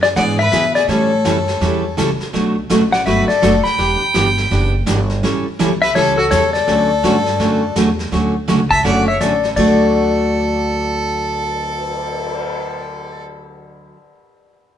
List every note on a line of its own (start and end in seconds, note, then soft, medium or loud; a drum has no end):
0.00 0.15 F#2 medium
0.00 0.09 G#4 medium
0.00 0.08 D5 medium
0.00 snare soft
0.16 0.51 G#2 medium
0.16 0.37 E3 medium
0.16 0.37 B3 medium
0.16 0.38 D4 medium
0.16 0.38 G#4 medium
0.16 0.36 D5 medium
0.16 0.22 F#5 loud
0.16 brush sweep soft
0.16 snare soft
0.39 0.75 B4 medium
0.39 0.75 E5 loud
0.52 0.87 B2 loud
0.52 0.64 E3 medium
0.52 0.64 B3 medium
0.52 0.64 D4 medium
0.52 0.64 G#4 medium
0.52 snare medium
0.52 hi-hat pedal medium
0.75 0.88 G#4 medium
0.75 0.89 D5 medium
0.75 snare soft
0.88 1.23 A2 medium
0.88 1.10 E3 medium
0.88 1.10 G3 medium
0.88 1.10 C#4 medium
0.88 1.10 E4 medium
0.88 1.93 A4 medium
0.88 1.10 A4 medium
0.88 1.94 C#5 medium
0.88 brush sweep medium
0.88 snare soft
1.25 1.60 F#2 medium
1.25 1.36 E3 medium
1.25 1.36 G3 medium
1.25 1.36 C#4 medium
1.25 1.37 E4 medium
1.25 1.37 A4 medium
1.25 snare medium
1.25 hi-hat pedal medium
1.48 snare soft
1.61 1.96 E2 medium
1.61 1.82 E3 medium
1.61 1.82 G3 medium
1.61 1.83 C#4 medium
1.61 1.83 E4 medium
1.61 1.83 A4 medium
1.61 brush sweep soft
1.61 snare soft
1.97 2.18 C#2 loud
1.97 2.08 E3 medium
1.97 2.09 G3 medium
1.97 2.09 C#4 medium
1.97 2.09 E4 medium
1.97 2.09 A4 medium
1.97 snare medium
1.97 hi-hat pedal medium
2.20 muted upright bass stroke soft
2.20 snare soft
2.33 2.69 B1 medium
2.33 2.55 B2 medium
2.33 2.55 F#3 medium
2.33 2.55 A3 medium
2.33 2.55 D4 medium
2.33 2.55 F#4 medium
2.33 brush sweep soft
2.33 snare soft
2.70 3.05 A1 medium
2.70 2.81 B2 medium
2.70 2.81 F#3 medium
2.70 2.81 A3 medium
2.70 2.81 D4 medium
2.70 2.81 F#4 medium
2.70 snare medium
2.70 hi-hat pedal medium
2.92 3.05 D5 medium
2.92 3.06 F#5 medium
2.92 snare soft
3.06 3.27 G1 medium
3.06 3.27 B2 medium
3.06 3.27 F#3 medium
3.06 3.28 A3 medium
3.06 3.28 D4 medium
3.06 3.28 F#4 medium
3.06 3.30 B4 medium
3.06 3.28 E5 medium
3.06 brush sweep medium
3.06 snare soft
3.28 3.64 A4 medium
3.28 3.66 D5 medium
3.28 snare soft
3.42 3.63 F#1 medium
3.42 3.53 B2 medium
3.42 3.54 F#3 medium
3.42 3.54 A3 medium
3.42 3.54 D4 medium
3.42 3.54 F#4 medium
3.42 snare medium
3.42 hi-hat pedal medium
3.64 4.69 G5 medium
3.64 4.69 B5 loud
3.64 muted upright bass stroke soft
3.64 snare soft
3.78 3.99 E1 medium
3.78 4.00 E3 medium
3.78 4.00 B3 medium
3.78 4.00 D4 medium
3.78 4.00 G4 medium
3.78 brush sweep soft
3.78 snare soft
4.01 muted upright bass stroke soft
4.14 4.50 G1 medium
4.14 4.26 E3 medium
4.14 4.26 B3 medium
4.14 4.26 D4 medium
4.14 4.26 G4 medium
4.14 snare medium
4.14 hi-hat pedal medium
4.37 snare soft
4.51 4.86 F#1 medium
4.51 4.72 E3 medium
4.51 4.72 B3 medium
4.51 4.72 D4 medium
4.51 4.73 G4 medium
4.51 brush sweep soft
4.51 snare soft
4.86 5.22 G1 loud
4.86 4.98 E3 medium
4.86 4.98 B3 medium
4.86 4.98 D4 medium
4.86 4.98 G4 medium
4.86 snare medium
4.86 hi-hat pedal medium
5.10 snare soft
5.23 5.44 A1 medium
5.23 5.44 E3 medium
5.23 5.44 G3 medium
5.23 5.45 C#4 medium
5.23 5.45 E4 medium
5.23 5.45 A4 medium
5.23 brush sweep medium
5.23 snare soft
5.46 muted upright bass stroke soft
5.59 5.94 B1 medium
5.59 5.70 E3 medium
5.59 5.71 G3 medium
5.59 5.71 C#4 medium
5.59 5.71 E4 medium
5.59 5.71 A4 medium
5.59 snare medium
5.59 hi-hat pedal medium
5.82 5.95 B4 medium
5.82 5.96 E5 loud
5.82 snare soft
5.95 6.31 C#2 medium
5.95 6.17 E3 medium
5.95 6.17 G3 medium
5.95 6.17 C#4 medium
5.95 6.17 E4 medium
5.95 6.16 A4 medium
5.95 6.17 A4 medium
5.95 6.19 C#5 loud
5.95 brush sweep soft
5.95 snare soft
6.17 6.30 F#4 medium
6.17 6.32 A4 medium
6.30 6.67 E2 medium
6.30 6.43 E3 medium
6.30 6.43 G3 medium
6.30 6.43 C#4 medium
6.30 6.43 E4 medium
6.30 6.53 A4 medium
6.30 6.43 A4 medium
6.30 6.53 C#5 medium
6.30 snare medium
6.30 hi-hat pedal medium
6.53 7.75 A4 medium
6.53 7.76 D5 medium
6.53 snare soft
6.67 7.02 D2 medium
6.67 6.89 D3 medium
6.67 6.89 F#3 medium
6.67 6.89 A3 medium
6.67 6.89 C#4 medium
6.67 6.89 F#4 medium
6.67 brush sweep soft
6.67 snare soft
7.03 7.39 G2 medium
7.03 7.15 D3 medium
7.03 7.15 F#3 medium
7.03 7.15 A3 medium
7.03 7.15 C#4 medium
7.03 7.15 F#4 medium
7.03 snare medium
7.03 hi-hat pedal soft
7.26 snare soft
7.39 7.75 F#2 medium
7.39 7.61 D3 medium
7.39 7.61 F#3 medium
7.39 7.61 A3 medium
7.39 7.61 C#4 medium
7.39 7.61 F#4 medium
7.39 brush sweep soft
7.39 snare soft
7.76 8.11 E2 medium
7.76 7.87 D3 medium
7.76 7.87 F#3 medium
7.76 7.87 A3 medium
7.76 7.87 C#4 medium
7.76 7.88 F#4 medium
7.76 snare medium
7.76 hi-hat pedal soft
7.99 snare soft
8.12 8.47 D2 medium
8.12 8.33 D3 medium
8.12 8.33 F#3 medium
8.12 8.33 A3 medium
8.12 8.34 C#4 medium
8.12 8.34 F#4 medium
8.12 brush sweep soft
8.12 snare soft
8.48 8.83 C#2 medium
8.48 8.59 D3 medium
8.48 8.59 F#3 medium
8.48 8.60 A3 medium
8.48 8.60 C#4 medium
8.48 8.60 F#4 medium
8.48 snare medium
8.48 hi-hat pedal medium
8.70 8.83 E5 medium
8.70 8.85 A5 loud
8.70 kick medium
8.70 snare soft
8.84 9.19 F#1 medium
8.84 9.06 D3 medium
8.84 9.06 F#3 medium
8.84 9.06 A3 medium
8.84 9.06 C#4 medium
8.84 9.06 F#4 medium
8.84 9.06 D5 medium
8.84 9.08 F#5 loud
8.84 brush sweep soft
8.84 snare soft
9.08 9.20 C#5 medium
9.08 9.21 E5 medium
9.20 9.55 A1 medium
9.20 9.32 D3 medium
9.20 9.32 F#3 medium
9.20 9.32 A3 medium
9.20 9.32 C#4 medium
9.20 9.32 F#4 medium
9.20 9.48 A4 medium
9.20 9.48 D5 medium
9.20 snare medium
9.20 hi-hat pedal medium
9.43 snare soft
9.56 13.92 D2 medium
9.56 13.95 D3 medium
9.56 13.96 F#3 medium
9.56 13.96 A3 medium
9.56 13.97 F#4 medium
9.56 13.22 A4 medium
9.56 13.22 D5 medium
9.56 kick medium
9.56 crash medium
9.79 cymbal swell soft